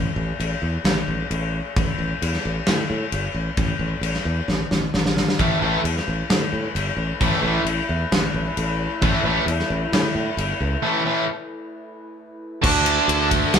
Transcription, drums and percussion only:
0.40 crash
0.85 snare, crash
1.31 crash
1.76 kick, crash
2.22 crash
2.33 snare
2.67 snare, crash
3.12 crash
3.57 kick, crash
4.03 crash
4.14 snare
4.49 snare
4.71 snare
4.94 snare
5.06 snare
5.17 snare
5.28 snare
5.39 kick, crash
5.85 crash
5.97 snare
6.30 snare, crash
6.76 crash
7.21 kick, crash
7.66 crash
8.12 snare, crash
8.57 crash
9.02 kick, crash
9.48 crash
9.59 snare
9.93 snare, crash
10.38 crash
12.64 kick, crash
12.86 ride
13.09 ride
13.31 kick, ride
13.54 snare, ride

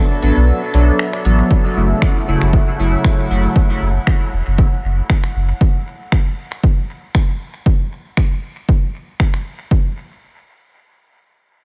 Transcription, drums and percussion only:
0.22 closed hi-hat
0.74 closed hi-hat
0.99 finger snap
1.13 finger snap
1.25 closed hi-hat
1.51 kick
2.02 finger snap, kick
2.42 finger snap
2.53 kick
3.04 finger snap, kick
3.56 kick
4.07 finger snap, kick
4.58 kick
5.10 finger snap, kick
5.24 finger snap
5.61 kick
6.12 finger snap, kick
6.52 finger snap
6.64 kick
7.15 finger snap, kick
7.66 kick
8.17 finger snap, kick
8.69 kick
9.20 finger snap, kick
9.34 finger snap
9.71 kick

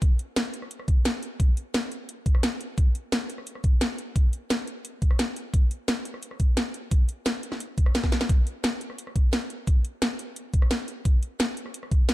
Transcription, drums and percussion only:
0.02 kick, closed hi-hat
0.19 closed hi-hat
0.36 snare, closed hi-hat
0.54 closed hi-hat
0.62 cross-stick
0.71 closed hi-hat
0.79 cross-stick
0.88 kick, closed hi-hat
1.05 snare, closed hi-hat
1.23 closed hi-hat
1.40 kick, closed hi-hat
1.57 closed hi-hat
1.74 snare, closed hi-hat
1.92 closed hi-hat
2.09 closed hi-hat
2.26 kick, closed hi-hat
2.35 cross-stick
2.43 snare, closed hi-hat
2.61 closed hi-hat
2.78 kick, closed hi-hat
2.95 closed hi-hat
3.12 snare, closed hi-hat
3.30 closed hi-hat
3.38 cross-stick
3.47 closed hi-hat
3.55 cross-stick
3.64 kick, closed hi-hat
3.81 snare, closed hi-hat
3.98 closed hi-hat
4.16 kick, closed hi-hat
4.33 closed hi-hat
4.50 snare, closed hi-hat
4.67 closed hi-hat
4.85 closed hi-hat
5.02 kick, closed hi-hat
5.11 cross-stick
5.19 snare, closed hi-hat
5.36 closed hi-hat
5.54 kick, closed hi-hat
5.71 closed hi-hat
5.88 snare, closed hi-hat
6.05 closed hi-hat
6.14 cross-stick
6.23 closed hi-hat
6.31 cross-stick
6.40 kick, closed hi-hat
6.57 snare, closed hi-hat
6.74 closed hi-hat
6.91 kick, closed hi-hat
7.09 closed hi-hat
7.26 snare, closed hi-hat
7.43 closed hi-hat
7.52 cross-stick, snare
7.60 closed hi-hat
7.78 kick, closed hi-hat
7.86 cross-stick
7.95 snare, closed hi-hat
8.04 kick, snare
8.12 snare, closed hi-hat
8.21 snare
8.29 kick, closed hi-hat
8.47 closed hi-hat
8.64 snare, closed hi-hat
8.81 closed hi-hat
8.90 cross-stick
8.98 closed hi-hat
9.07 cross-stick
9.16 kick, closed hi-hat
9.33 snare, closed hi-hat
9.50 closed hi-hat
9.67 kick, closed hi-hat
9.85 closed hi-hat
10.02 snare, closed hi-hat
10.19 closed hi-hat
10.36 closed hi-hat
10.54 kick, closed hi-hat
10.62 cross-stick
10.71 snare, closed hi-hat
10.88 closed hi-hat
11.05 kick, closed hi-hat
11.23 closed hi-hat
11.40 snare, closed hi-hat
11.57 closed hi-hat
11.66 cross-stick
11.74 closed hi-hat
11.83 cross-stick
11.91 kick, closed hi-hat
12.09 snare, closed hi-hat

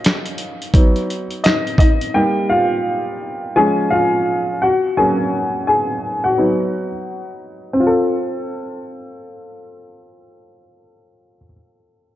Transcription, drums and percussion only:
0.04 snare, clap, closed hi-hat
0.26 closed hi-hat
0.38 closed hi-hat
0.62 closed hi-hat
0.74 kick, closed hi-hat
0.96 closed hi-hat
1.10 closed hi-hat
1.31 closed hi-hat
1.44 snare, clap, closed hi-hat
1.67 closed hi-hat
1.78 kick, closed hi-hat
2.01 closed hi-hat

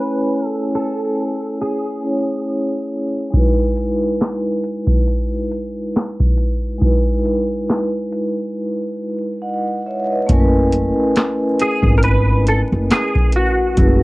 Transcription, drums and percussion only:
3.34 kick, closed hi-hat
3.77 closed hi-hat
4.20 snare, clap, closed hi-hat
4.64 closed hi-hat
4.87 kick
5.08 closed hi-hat
5.52 closed hi-hat
5.96 snare, clap, closed hi-hat
6.20 kick
6.38 closed hi-hat
6.82 kick, closed hi-hat
7.25 closed hi-hat
7.69 snare, clap, closed hi-hat
8.12 closed hi-hat
10.29 kick, closed hi-hat
10.72 closed hi-hat
11.15 snare, clap, closed hi-hat
11.59 closed hi-hat
11.83 kick
12.03 closed hi-hat
12.47 closed hi-hat
12.91 snare, clap, closed hi-hat
13.15 kick
13.32 closed hi-hat
13.77 kick, closed hi-hat

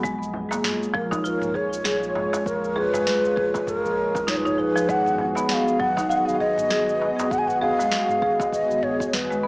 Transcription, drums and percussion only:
0.04 kick, shaker
0.23 shaker
0.34 darbuka dum
0.51 darbuka ka, darbuka tek, shaker
0.64 snare, mid tom, shaker
0.83 shaker
0.94 kick
1.11 kick, darbuka ka, darbuka tek, shaker
1.25 shaker
1.42 mid tom, shaker
1.55 kick
1.73 shaker
1.85 snare, shaker
2.03 shaker
2.15 mid tom, darbuka ka
2.33 darbuka tek, darbuka dum, shaker
2.46 kick, shaker
2.64 shaker
2.76 darbuka dum
2.93 mid tom, darbuka ka, darbuka tek, shaker
3.07 snare, shaker
3.25 shaker
3.37 kick
3.54 kick, darbuka ka, darbuka tek, shaker
3.67 kick, mid tom, shaker
3.86 shaker
4.15 kick, darbuka tek, darbuka dum, shaker
4.28 snare, shaker
4.45 mid tom, darbuka ka, shaker
4.75 darbuka ka, shaker
4.89 kick, shaker
5.06 mid tom, shaker
5.18 darbuka dum
5.35 darbuka ka, darbuka tek, shaker
5.49 snare, shaker
5.68 shaker
5.80 kick, mid tom
5.97 kick, darbuka ka, darbuka tek, shaker
6.11 shaker
6.28 shaker
6.40 kick
6.58 mid tom, shaker
6.70 snare, shaker
6.89 shaker
7.01 darbuka ka
7.19 darbuka tek, darbuka dum, shaker
7.31 kick, mid tom, shaker
7.50 shaker
7.61 darbuka dum
7.79 darbuka ka, darbuka tek, shaker
7.92 snare, shaker
8.10 mid tom, shaker
8.22 kick
8.39 kick, darbuka ka, darbuka tek, shaker
8.53 kick, shaker
8.71 shaker
8.83 mid tom
9.00 kick, darbuka dum, shaker
9.13 snare, shaker
9.31 darbuka ka, shaker

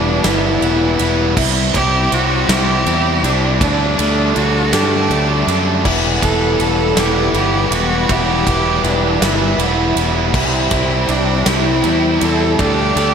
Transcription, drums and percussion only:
0.24 snare, ride
0.62 ride
0.99 ride
1.37 kick, crash
1.74 kick, ride
2.12 ride
2.49 snare, ride
2.87 ride
3.24 ride
3.61 kick, ride
3.99 ride
4.36 ride
4.73 snare, ride
5.11 ride
5.48 ride
5.85 kick, crash
6.22 kick, ride
6.60 ride
6.97 snare, ride
7.34 ride
7.72 ride
8.09 kick, ride
8.47 kick, ride
8.84 ride
9.22 snare, ride
9.59 ride
9.97 ride
10.34 kick, crash
10.71 kick, ride
11.09 ride
11.46 snare, ride
11.84 ride
12.21 ride
12.59 kick, ride
12.97 ride

